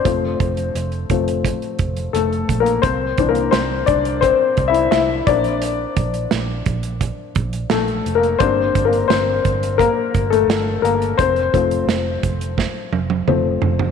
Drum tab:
HH |x-xxxxxxxxxxxxxx|x-xxx-xxx-xxx-xx|x-xxx-xxx-xxxxxx|x-xxx-xxx-xxx-xx|
SD |----------------|----o-------o---|----o-------o---|----o-------o---|
T1 |----------------|----------------|----------------|----------------|
T2 |----------------|----------------|----------------|----------------|
FT |----------------|----------------|----------------|----------------|
BD |o-o---o-o-o---o-|o-o---o-o-o---o-|--o---o-o-o-----|o-o---o-o-o-----|

HH |xxxxx-xx--------|
SD |----o---o-------|
T1 |----------oo----|
T2 |------------o---|
FT |--------------oo|
BD |o-o---o-o-------|